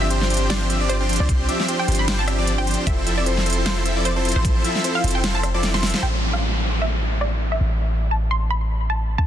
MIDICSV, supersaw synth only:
0, 0, Header, 1, 2, 480
1, 0, Start_track
1, 0, Tempo, 394737
1, 1569, Time_signature, 4, 2, 24, 8
1, 11270, End_track
2, 0, Start_track
2, 0, Title_t, "Supersaw synth"
2, 0, Program_c, 0, 81
2, 20, Note_on_c, 0, 53, 100
2, 20, Note_on_c, 0, 60, 88
2, 20, Note_on_c, 0, 67, 90
2, 20, Note_on_c, 0, 76, 109
2, 21, Note_on_c, 0, 62, 93
2, 102, Note_off_c, 0, 53, 0
2, 102, Note_off_c, 0, 60, 0
2, 102, Note_off_c, 0, 62, 0
2, 102, Note_off_c, 0, 67, 0
2, 102, Note_off_c, 0, 76, 0
2, 127, Note_on_c, 0, 53, 80
2, 128, Note_on_c, 0, 60, 73
2, 128, Note_on_c, 0, 62, 75
2, 128, Note_on_c, 0, 67, 70
2, 128, Note_on_c, 0, 72, 90
2, 342, Note_off_c, 0, 53, 0
2, 342, Note_off_c, 0, 72, 0
2, 343, Note_off_c, 0, 60, 0
2, 343, Note_off_c, 0, 62, 0
2, 343, Note_off_c, 0, 67, 0
2, 368, Note_on_c, 0, 53, 76
2, 368, Note_on_c, 0, 62, 70
2, 368, Note_on_c, 0, 67, 70
2, 368, Note_on_c, 0, 72, 85
2, 369, Note_on_c, 0, 60, 71
2, 583, Note_off_c, 0, 53, 0
2, 583, Note_off_c, 0, 60, 0
2, 583, Note_off_c, 0, 62, 0
2, 583, Note_off_c, 0, 67, 0
2, 583, Note_off_c, 0, 72, 0
2, 608, Note_on_c, 0, 53, 96
2, 608, Note_on_c, 0, 60, 90
2, 608, Note_on_c, 0, 67, 88
2, 608, Note_on_c, 0, 72, 107
2, 609, Note_on_c, 0, 62, 90
2, 823, Note_off_c, 0, 53, 0
2, 823, Note_off_c, 0, 60, 0
2, 823, Note_off_c, 0, 62, 0
2, 823, Note_off_c, 0, 67, 0
2, 823, Note_off_c, 0, 72, 0
2, 847, Note_on_c, 0, 53, 87
2, 847, Note_on_c, 0, 76, 93
2, 848, Note_on_c, 0, 60, 78
2, 848, Note_on_c, 0, 62, 78
2, 848, Note_on_c, 0, 67, 79
2, 961, Note_off_c, 0, 53, 0
2, 961, Note_off_c, 0, 60, 0
2, 961, Note_off_c, 0, 62, 0
2, 961, Note_off_c, 0, 67, 0
2, 961, Note_off_c, 0, 76, 0
2, 981, Note_on_c, 0, 53, 93
2, 981, Note_on_c, 0, 60, 88
2, 981, Note_on_c, 0, 62, 85
2, 981, Note_on_c, 0, 67, 83
2, 981, Note_on_c, 0, 74, 103
2, 1152, Note_off_c, 0, 53, 0
2, 1152, Note_off_c, 0, 60, 0
2, 1152, Note_off_c, 0, 62, 0
2, 1152, Note_off_c, 0, 67, 0
2, 1152, Note_off_c, 0, 74, 0
2, 1222, Note_on_c, 0, 53, 70
2, 1222, Note_on_c, 0, 60, 65
2, 1222, Note_on_c, 0, 62, 65
2, 1222, Note_on_c, 0, 67, 63
2, 1222, Note_on_c, 0, 72, 79
2, 1303, Note_off_c, 0, 53, 0
2, 1303, Note_off_c, 0, 60, 0
2, 1303, Note_off_c, 0, 62, 0
2, 1303, Note_off_c, 0, 67, 0
2, 1303, Note_off_c, 0, 72, 0
2, 1328, Note_on_c, 0, 53, 85
2, 1328, Note_on_c, 0, 60, 78
2, 1328, Note_on_c, 0, 62, 80
2, 1328, Note_on_c, 0, 67, 78
2, 1328, Note_on_c, 0, 72, 93
2, 1542, Note_off_c, 0, 62, 0
2, 1543, Note_off_c, 0, 53, 0
2, 1543, Note_off_c, 0, 60, 0
2, 1543, Note_off_c, 0, 67, 0
2, 1543, Note_off_c, 0, 72, 0
2, 1567, Note_on_c, 0, 53, 83
2, 1567, Note_on_c, 0, 60, 78
2, 1567, Note_on_c, 0, 67, 78
2, 1567, Note_on_c, 0, 72, 92
2, 1568, Note_on_c, 0, 62, 79
2, 1782, Note_off_c, 0, 53, 0
2, 1782, Note_off_c, 0, 60, 0
2, 1782, Note_off_c, 0, 62, 0
2, 1782, Note_off_c, 0, 67, 0
2, 1782, Note_off_c, 0, 72, 0
2, 1807, Note_on_c, 0, 53, 94
2, 1807, Note_on_c, 0, 60, 90
2, 1807, Note_on_c, 0, 62, 84
2, 1807, Note_on_c, 0, 67, 88
2, 1807, Note_on_c, 0, 76, 104
2, 1921, Note_off_c, 0, 53, 0
2, 1921, Note_off_c, 0, 60, 0
2, 1921, Note_off_c, 0, 62, 0
2, 1921, Note_off_c, 0, 67, 0
2, 1921, Note_off_c, 0, 76, 0
2, 1939, Note_on_c, 0, 53, 100
2, 1939, Note_on_c, 0, 60, 93
2, 1939, Note_on_c, 0, 62, 90
2, 1939, Note_on_c, 0, 67, 92
2, 1939, Note_on_c, 0, 76, 112
2, 2022, Note_off_c, 0, 53, 0
2, 2022, Note_off_c, 0, 60, 0
2, 2022, Note_off_c, 0, 62, 0
2, 2022, Note_off_c, 0, 67, 0
2, 2022, Note_off_c, 0, 76, 0
2, 2047, Note_on_c, 0, 53, 81
2, 2048, Note_on_c, 0, 60, 72
2, 2048, Note_on_c, 0, 62, 75
2, 2048, Note_on_c, 0, 67, 76
2, 2048, Note_on_c, 0, 72, 87
2, 2262, Note_off_c, 0, 53, 0
2, 2262, Note_off_c, 0, 60, 0
2, 2262, Note_off_c, 0, 62, 0
2, 2262, Note_off_c, 0, 67, 0
2, 2262, Note_off_c, 0, 72, 0
2, 2287, Note_on_c, 0, 53, 77
2, 2287, Note_on_c, 0, 60, 73
2, 2288, Note_on_c, 0, 62, 72
2, 2288, Note_on_c, 0, 67, 70
2, 2288, Note_on_c, 0, 72, 85
2, 2502, Note_off_c, 0, 53, 0
2, 2502, Note_off_c, 0, 60, 0
2, 2502, Note_off_c, 0, 62, 0
2, 2502, Note_off_c, 0, 72, 0
2, 2503, Note_off_c, 0, 67, 0
2, 2526, Note_on_c, 0, 53, 96
2, 2526, Note_on_c, 0, 60, 91
2, 2526, Note_on_c, 0, 62, 87
2, 2526, Note_on_c, 0, 67, 91
2, 2526, Note_on_c, 0, 72, 110
2, 2741, Note_off_c, 0, 62, 0
2, 2741, Note_off_c, 0, 67, 0
2, 2742, Note_off_c, 0, 53, 0
2, 2742, Note_off_c, 0, 60, 0
2, 2742, Note_off_c, 0, 72, 0
2, 2767, Note_on_c, 0, 53, 85
2, 2767, Note_on_c, 0, 60, 79
2, 2767, Note_on_c, 0, 62, 79
2, 2767, Note_on_c, 0, 67, 76
2, 2767, Note_on_c, 0, 76, 95
2, 2881, Note_off_c, 0, 53, 0
2, 2881, Note_off_c, 0, 60, 0
2, 2881, Note_off_c, 0, 62, 0
2, 2881, Note_off_c, 0, 67, 0
2, 2881, Note_off_c, 0, 76, 0
2, 2899, Note_on_c, 0, 53, 95
2, 2899, Note_on_c, 0, 60, 88
2, 2899, Note_on_c, 0, 67, 89
2, 2900, Note_on_c, 0, 62, 90
2, 2900, Note_on_c, 0, 74, 105
2, 3071, Note_off_c, 0, 53, 0
2, 3071, Note_off_c, 0, 60, 0
2, 3071, Note_off_c, 0, 67, 0
2, 3072, Note_off_c, 0, 62, 0
2, 3072, Note_off_c, 0, 74, 0
2, 3139, Note_on_c, 0, 60, 66
2, 3139, Note_on_c, 0, 62, 64
2, 3140, Note_on_c, 0, 53, 70
2, 3140, Note_on_c, 0, 67, 66
2, 3140, Note_on_c, 0, 72, 78
2, 3222, Note_off_c, 0, 53, 0
2, 3222, Note_off_c, 0, 60, 0
2, 3222, Note_off_c, 0, 62, 0
2, 3222, Note_off_c, 0, 67, 0
2, 3222, Note_off_c, 0, 72, 0
2, 3247, Note_on_c, 0, 53, 84
2, 3247, Note_on_c, 0, 60, 80
2, 3247, Note_on_c, 0, 62, 77
2, 3247, Note_on_c, 0, 67, 79
2, 3247, Note_on_c, 0, 72, 96
2, 3462, Note_off_c, 0, 53, 0
2, 3462, Note_off_c, 0, 60, 0
2, 3462, Note_off_c, 0, 62, 0
2, 3462, Note_off_c, 0, 67, 0
2, 3462, Note_off_c, 0, 72, 0
2, 3728, Note_on_c, 0, 53, 95
2, 3728, Note_on_c, 0, 60, 86
2, 3728, Note_on_c, 0, 64, 87
2, 3728, Note_on_c, 0, 76, 105
2, 3729, Note_on_c, 0, 69, 85
2, 3841, Note_off_c, 0, 53, 0
2, 3841, Note_off_c, 0, 60, 0
2, 3841, Note_off_c, 0, 64, 0
2, 3841, Note_off_c, 0, 76, 0
2, 3842, Note_off_c, 0, 69, 0
2, 3862, Note_on_c, 0, 53, 99
2, 3862, Note_on_c, 0, 60, 92
2, 3862, Note_on_c, 0, 64, 90
2, 3862, Note_on_c, 0, 69, 92
2, 3862, Note_on_c, 0, 76, 107
2, 3943, Note_off_c, 0, 53, 0
2, 3943, Note_off_c, 0, 60, 0
2, 3943, Note_off_c, 0, 64, 0
2, 3943, Note_off_c, 0, 69, 0
2, 3943, Note_off_c, 0, 76, 0
2, 3968, Note_on_c, 0, 53, 80
2, 3968, Note_on_c, 0, 60, 73
2, 3968, Note_on_c, 0, 64, 75
2, 3968, Note_on_c, 0, 69, 72
2, 3968, Note_on_c, 0, 72, 89
2, 4183, Note_off_c, 0, 53, 0
2, 4183, Note_off_c, 0, 60, 0
2, 4183, Note_off_c, 0, 64, 0
2, 4183, Note_off_c, 0, 69, 0
2, 4183, Note_off_c, 0, 72, 0
2, 4207, Note_on_c, 0, 64, 70
2, 4207, Note_on_c, 0, 69, 69
2, 4207, Note_on_c, 0, 72, 85
2, 4208, Note_on_c, 0, 53, 75
2, 4208, Note_on_c, 0, 60, 69
2, 4422, Note_off_c, 0, 53, 0
2, 4422, Note_off_c, 0, 60, 0
2, 4422, Note_off_c, 0, 64, 0
2, 4422, Note_off_c, 0, 69, 0
2, 4422, Note_off_c, 0, 72, 0
2, 4447, Note_on_c, 0, 53, 97
2, 4447, Note_on_c, 0, 60, 89
2, 4447, Note_on_c, 0, 64, 91
2, 4447, Note_on_c, 0, 69, 88
2, 4447, Note_on_c, 0, 72, 106
2, 4662, Note_off_c, 0, 53, 0
2, 4662, Note_off_c, 0, 60, 0
2, 4662, Note_off_c, 0, 64, 0
2, 4662, Note_off_c, 0, 69, 0
2, 4662, Note_off_c, 0, 72, 0
2, 4687, Note_on_c, 0, 60, 78
2, 4687, Note_on_c, 0, 64, 76
2, 4687, Note_on_c, 0, 69, 76
2, 4687, Note_on_c, 0, 76, 97
2, 4688, Note_on_c, 0, 53, 88
2, 4801, Note_off_c, 0, 53, 0
2, 4801, Note_off_c, 0, 60, 0
2, 4801, Note_off_c, 0, 64, 0
2, 4801, Note_off_c, 0, 69, 0
2, 4801, Note_off_c, 0, 76, 0
2, 4819, Note_on_c, 0, 53, 94
2, 4819, Note_on_c, 0, 60, 88
2, 4819, Note_on_c, 0, 69, 88
2, 4819, Note_on_c, 0, 74, 104
2, 4820, Note_on_c, 0, 64, 87
2, 4991, Note_off_c, 0, 53, 0
2, 4991, Note_off_c, 0, 60, 0
2, 4991, Note_off_c, 0, 69, 0
2, 4991, Note_off_c, 0, 74, 0
2, 4992, Note_off_c, 0, 64, 0
2, 5061, Note_on_c, 0, 53, 72
2, 5061, Note_on_c, 0, 60, 68
2, 5061, Note_on_c, 0, 64, 65
2, 5061, Note_on_c, 0, 69, 67
2, 5061, Note_on_c, 0, 72, 80
2, 5142, Note_off_c, 0, 53, 0
2, 5142, Note_off_c, 0, 64, 0
2, 5143, Note_off_c, 0, 60, 0
2, 5143, Note_off_c, 0, 69, 0
2, 5143, Note_off_c, 0, 72, 0
2, 5168, Note_on_c, 0, 53, 85
2, 5168, Note_on_c, 0, 60, 79
2, 5168, Note_on_c, 0, 69, 77
2, 5169, Note_on_c, 0, 64, 76
2, 5169, Note_on_c, 0, 72, 94
2, 5383, Note_off_c, 0, 53, 0
2, 5383, Note_off_c, 0, 60, 0
2, 5383, Note_off_c, 0, 64, 0
2, 5383, Note_off_c, 0, 69, 0
2, 5383, Note_off_c, 0, 72, 0
2, 5408, Note_on_c, 0, 53, 85
2, 5408, Note_on_c, 0, 60, 78
2, 5408, Note_on_c, 0, 64, 79
2, 5408, Note_on_c, 0, 72, 92
2, 5623, Note_off_c, 0, 53, 0
2, 5623, Note_off_c, 0, 60, 0
2, 5623, Note_off_c, 0, 64, 0
2, 5623, Note_off_c, 0, 72, 0
2, 5647, Note_on_c, 0, 60, 86
2, 5647, Note_on_c, 0, 64, 88
2, 5647, Note_on_c, 0, 69, 88
2, 5647, Note_on_c, 0, 76, 106
2, 5648, Note_on_c, 0, 53, 96
2, 5761, Note_off_c, 0, 53, 0
2, 5761, Note_off_c, 0, 60, 0
2, 5761, Note_off_c, 0, 64, 0
2, 5761, Note_off_c, 0, 69, 0
2, 5761, Note_off_c, 0, 76, 0
2, 5779, Note_on_c, 0, 76, 111
2, 5780, Note_on_c, 0, 53, 101
2, 5780, Note_on_c, 0, 60, 88
2, 5780, Note_on_c, 0, 64, 87
2, 5780, Note_on_c, 0, 69, 92
2, 5862, Note_off_c, 0, 53, 0
2, 5862, Note_off_c, 0, 60, 0
2, 5862, Note_off_c, 0, 64, 0
2, 5862, Note_off_c, 0, 69, 0
2, 5862, Note_off_c, 0, 76, 0
2, 5887, Note_on_c, 0, 53, 82
2, 5887, Note_on_c, 0, 60, 72
2, 5887, Note_on_c, 0, 64, 75
2, 5887, Note_on_c, 0, 69, 73
2, 5887, Note_on_c, 0, 72, 88
2, 6102, Note_off_c, 0, 53, 0
2, 6102, Note_off_c, 0, 60, 0
2, 6102, Note_off_c, 0, 64, 0
2, 6102, Note_off_c, 0, 69, 0
2, 6102, Note_off_c, 0, 72, 0
2, 6127, Note_on_c, 0, 53, 76
2, 6127, Note_on_c, 0, 64, 70
2, 6127, Note_on_c, 0, 69, 70
2, 6127, Note_on_c, 0, 72, 83
2, 6128, Note_on_c, 0, 60, 70
2, 6342, Note_off_c, 0, 53, 0
2, 6342, Note_off_c, 0, 60, 0
2, 6342, Note_off_c, 0, 64, 0
2, 6342, Note_off_c, 0, 69, 0
2, 6342, Note_off_c, 0, 72, 0
2, 6366, Note_on_c, 0, 53, 97
2, 6366, Note_on_c, 0, 64, 89
2, 6366, Note_on_c, 0, 72, 106
2, 6367, Note_on_c, 0, 60, 89
2, 6367, Note_on_c, 0, 69, 90
2, 6582, Note_off_c, 0, 53, 0
2, 6582, Note_off_c, 0, 60, 0
2, 6582, Note_off_c, 0, 64, 0
2, 6582, Note_off_c, 0, 69, 0
2, 6582, Note_off_c, 0, 72, 0
2, 6741, Note_on_c, 0, 53, 88
2, 6741, Note_on_c, 0, 60, 83
2, 6741, Note_on_c, 0, 64, 82
2, 6741, Note_on_c, 0, 69, 85
2, 6741, Note_on_c, 0, 74, 96
2, 6949, Note_off_c, 0, 53, 0
2, 6949, Note_off_c, 0, 60, 0
2, 6949, Note_off_c, 0, 64, 0
2, 6949, Note_off_c, 0, 69, 0
2, 6949, Note_off_c, 0, 74, 0
2, 6981, Note_on_c, 0, 53, 85
2, 6981, Note_on_c, 0, 60, 80
2, 6981, Note_on_c, 0, 64, 78
2, 6981, Note_on_c, 0, 69, 78
2, 6981, Note_on_c, 0, 76, 99
2, 7189, Note_off_c, 0, 53, 0
2, 7189, Note_off_c, 0, 60, 0
2, 7189, Note_off_c, 0, 64, 0
2, 7189, Note_off_c, 0, 69, 0
2, 7189, Note_off_c, 0, 76, 0
2, 7220, Note_on_c, 0, 64, 93
2, 7220, Note_on_c, 0, 69, 93
2, 7220, Note_on_c, 0, 72, 106
2, 7221, Note_on_c, 0, 53, 98
2, 7221, Note_on_c, 0, 60, 89
2, 7302, Note_off_c, 0, 64, 0
2, 7302, Note_off_c, 0, 69, 0
2, 7302, Note_off_c, 0, 72, 0
2, 7303, Note_off_c, 0, 53, 0
2, 7303, Note_off_c, 0, 60, 0
2, 11270, End_track
0, 0, End_of_file